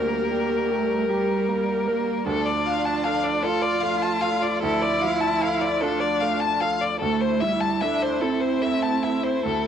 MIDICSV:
0, 0, Header, 1, 6, 480
1, 0, Start_track
1, 0, Key_signature, -1, "minor"
1, 0, Tempo, 784314
1, 1386, Time_signature, 6, 3, 24, 8
1, 2829, Tempo, 798935
1, 4749, Tempo, 821918
1, 5831, End_track
2, 0, Start_track
2, 0, Title_t, "Violin"
2, 0, Program_c, 0, 40
2, 0, Note_on_c, 0, 70, 53
2, 1384, Note_off_c, 0, 70, 0
2, 1388, Note_on_c, 0, 69, 65
2, 1505, Note_on_c, 0, 74, 57
2, 1514, Note_off_c, 0, 69, 0
2, 1628, Note_on_c, 0, 77, 58
2, 1637, Note_off_c, 0, 74, 0
2, 1746, Note_on_c, 0, 81, 49
2, 1755, Note_off_c, 0, 77, 0
2, 1861, Note_on_c, 0, 77, 58
2, 1870, Note_off_c, 0, 81, 0
2, 1981, Note_on_c, 0, 74, 55
2, 1990, Note_off_c, 0, 77, 0
2, 2100, Note_on_c, 0, 69, 67
2, 2109, Note_off_c, 0, 74, 0
2, 2214, Note_on_c, 0, 74, 71
2, 2223, Note_off_c, 0, 69, 0
2, 2329, Note_on_c, 0, 77, 61
2, 2338, Note_off_c, 0, 74, 0
2, 2460, Note_on_c, 0, 81, 61
2, 2469, Note_off_c, 0, 77, 0
2, 2576, Note_on_c, 0, 77, 63
2, 2586, Note_off_c, 0, 81, 0
2, 2705, Note_on_c, 0, 74, 58
2, 2714, Note_off_c, 0, 77, 0
2, 2822, Note_off_c, 0, 74, 0
2, 2826, Note_on_c, 0, 69, 67
2, 2943, Note_on_c, 0, 74, 66
2, 2952, Note_off_c, 0, 69, 0
2, 3061, Note_on_c, 0, 77, 64
2, 3070, Note_off_c, 0, 74, 0
2, 3179, Note_on_c, 0, 81, 55
2, 3188, Note_off_c, 0, 77, 0
2, 3305, Note_on_c, 0, 77, 59
2, 3314, Note_off_c, 0, 81, 0
2, 3422, Note_on_c, 0, 74, 58
2, 3431, Note_off_c, 0, 77, 0
2, 3541, Note_on_c, 0, 69, 66
2, 3550, Note_off_c, 0, 74, 0
2, 3657, Note_on_c, 0, 74, 68
2, 3666, Note_off_c, 0, 69, 0
2, 3780, Note_on_c, 0, 77, 63
2, 3789, Note_off_c, 0, 74, 0
2, 3897, Note_on_c, 0, 81, 58
2, 3906, Note_off_c, 0, 77, 0
2, 4019, Note_on_c, 0, 77, 64
2, 4028, Note_off_c, 0, 81, 0
2, 4143, Note_on_c, 0, 74, 57
2, 4152, Note_off_c, 0, 77, 0
2, 4256, Note_off_c, 0, 74, 0
2, 4259, Note_on_c, 0, 69, 67
2, 4381, Note_on_c, 0, 72, 59
2, 4390, Note_off_c, 0, 69, 0
2, 4497, Note_on_c, 0, 76, 60
2, 4506, Note_off_c, 0, 72, 0
2, 4622, Note_on_c, 0, 81, 54
2, 4631, Note_off_c, 0, 76, 0
2, 4743, Note_on_c, 0, 76, 60
2, 4752, Note_off_c, 0, 81, 0
2, 4868, Note_on_c, 0, 72, 54
2, 4877, Note_off_c, 0, 76, 0
2, 4979, Note_on_c, 0, 69, 60
2, 4988, Note_off_c, 0, 72, 0
2, 5092, Note_on_c, 0, 72, 57
2, 5101, Note_off_c, 0, 69, 0
2, 5216, Note_on_c, 0, 76, 60
2, 5225, Note_off_c, 0, 72, 0
2, 5335, Note_on_c, 0, 81, 53
2, 5344, Note_off_c, 0, 76, 0
2, 5455, Note_on_c, 0, 76, 50
2, 5463, Note_off_c, 0, 81, 0
2, 5576, Note_on_c, 0, 72, 53
2, 5585, Note_off_c, 0, 76, 0
2, 5697, Note_off_c, 0, 72, 0
2, 5701, Note_on_c, 0, 69, 57
2, 5831, Note_off_c, 0, 69, 0
2, 5831, End_track
3, 0, Start_track
3, 0, Title_t, "Grand piano"
3, 0, Program_c, 1, 0
3, 0, Note_on_c, 1, 38, 53
3, 0, Note_on_c, 1, 70, 45
3, 60, Control_c, 1, 64, 127
3, 94, Note_off_c, 1, 70, 0
3, 191, Note_on_c, 1, 67, 48
3, 421, Note_off_c, 1, 67, 0
3, 430, Note_on_c, 1, 67, 45
3, 661, Note_off_c, 1, 67, 0
3, 670, Note_on_c, 1, 67, 50
3, 910, Note_on_c, 1, 58, 46
3, 1052, Note_off_c, 1, 67, 0
3, 1147, Note_on_c, 1, 70, 53
3, 1292, Note_off_c, 1, 58, 0
3, 1364, Note_off_c, 1, 38, 0
3, 1384, Note_on_c, 1, 38, 62
3, 1386, Note_off_c, 1, 70, 0
3, 1398, Control_c, 1, 64, 0
3, 1496, Control_c, 1, 64, 127
3, 1630, Note_on_c, 1, 65, 50
3, 1869, Note_on_c, 1, 69, 49
3, 2011, Note_off_c, 1, 65, 0
3, 2109, Note_on_c, 1, 65, 58
3, 2250, Note_off_c, 1, 69, 0
3, 2343, Note_on_c, 1, 57, 45
3, 2490, Note_off_c, 1, 65, 0
3, 2587, Note_on_c, 1, 69, 55
3, 2731, Note_off_c, 1, 57, 0
3, 2803, Note_off_c, 1, 38, 0
3, 2833, Note_on_c, 1, 38, 66
3, 2841, Control_c, 1, 64, 0
3, 2921, Control_c, 1, 64, 127
3, 2974, Note_off_c, 1, 69, 0
3, 3078, Note_on_c, 1, 53, 54
3, 3312, Note_on_c, 1, 69, 53
3, 3458, Note_off_c, 1, 53, 0
3, 3550, Note_on_c, 1, 65, 62
3, 3694, Note_off_c, 1, 69, 0
3, 3789, Note_on_c, 1, 57, 50
3, 3931, Note_off_c, 1, 65, 0
3, 4027, Note_on_c, 1, 69, 62
3, 4170, Note_off_c, 1, 57, 0
3, 4243, Note_off_c, 1, 38, 0
3, 4266, Note_off_c, 1, 69, 0
3, 4268, Note_on_c, 1, 38, 63
3, 4276, Control_c, 1, 64, 0
3, 4370, Control_c, 1, 64, 127
3, 4508, Note_on_c, 1, 64, 54
3, 4750, Note_on_c, 1, 69, 52
3, 4890, Note_off_c, 1, 64, 0
3, 4981, Note_on_c, 1, 64, 53
3, 5127, Note_off_c, 1, 69, 0
3, 5216, Note_on_c, 1, 57, 48
3, 5365, Note_off_c, 1, 64, 0
3, 5459, Note_on_c, 1, 69, 49
3, 5606, Note_off_c, 1, 57, 0
3, 5684, Note_off_c, 1, 38, 0
3, 5703, Note_on_c, 1, 38, 57
3, 5719, Control_c, 1, 64, 0
3, 5823, Control_c, 1, 64, 127
3, 5831, Note_off_c, 1, 38, 0
3, 5831, Note_off_c, 1, 69, 0
3, 5831, End_track
4, 0, Start_track
4, 0, Title_t, "Viola"
4, 0, Program_c, 2, 41
4, 0, Note_on_c, 2, 67, 51
4, 1383, Note_off_c, 2, 67, 0
4, 1387, Note_on_c, 2, 65, 57
4, 4242, Note_off_c, 2, 65, 0
4, 4264, Note_on_c, 2, 64, 70
4, 5831, Note_off_c, 2, 64, 0
4, 5831, End_track
5, 0, Start_track
5, 0, Title_t, "Analog synth pad"
5, 0, Program_c, 3, 89
5, 0, Note_on_c, 3, 55, 52
5, 0, Note_on_c, 3, 67, 60
5, 0, Note_on_c, 3, 74, 53
5, 1363, Note_off_c, 3, 74, 0
5, 1385, Note_off_c, 3, 67, 0
5, 1385, Note_on_c, 3, 53, 59
5, 1385, Note_on_c, 3, 74, 65
5, 1386, Note_on_c, 3, 57, 62
5, 1387, Note_off_c, 3, 55, 0
5, 4241, Note_off_c, 3, 74, 0
5, 4255, Note_off_c, 3, 57, 0
5, 4261, Note_on_c, 3, 64, 67
5, 4262, Note_on_c, 3, 57, 64
5, 4264, Note_off_c, 3, 53, 0
5, 4265, Note_on_c, 3, 76, 69
5, 5831, Note_off_c, 3, 57, 0
5, 5831, Note_off_c, 3, 64, 0
5, 5831, Note_off_c, 3, 76, 0
5, 5831, End_track
6, 0, Start_track
6, 0, Title_t, "Cello"
6, 0, Program_c, 4, 42
6, 0, Note_on_c, 4, 58, 80
6, 434, Note_on_c, 4, 57, 78
6, 443, Note_off_c, 4, 58, 0
6, 668, Note_off_c, 4, 57, 0
6, 671, Note_on_c, 4, 55, 83
6, 1147, Note_on_c, 4, 58, 82
6, 1156, Note_off_c, 4, 55, 0
6, 1385, Note_off_c, 4, 58, 0
6, 1388, Note_on_c, 4, 62, 102
6, 2101, Note_on_c, 4, 65, 107
6, 2111, Note_off_c, 4, 62, 0
6, 2827, Note_off_c, 4, 65, 0
6, 2831, Note_on_c, 4, 64, 116
6, 3549, Note_on_c, 4, 62, 95
6, 3558, Note_off_c, 4, 64, 0
6, 4026, Note_off_c, 4, 62, 0
6, 4270, Note_on_c, 4, 57, 92
6, 4505, Note_on_c, 4, 55, 85
6, 4514, Note_off_c, 4, 57, 0
6, 4748, Note_on_c, 4, 62, 89
6, 4757, Note_off_c, 4, 55, 0
6, 4974, Note_on_c, 4, 60, 85
6, 4983, Note_off_c, 4, 62, 0
6, 5696, Note_off_c, 4, 60, 0
6, 5700, Note_on_c, 4, 57, 78
6, 5831, Note_off_c, 4, 57, 0
6, 5831, End_track
0, 0, End_of_file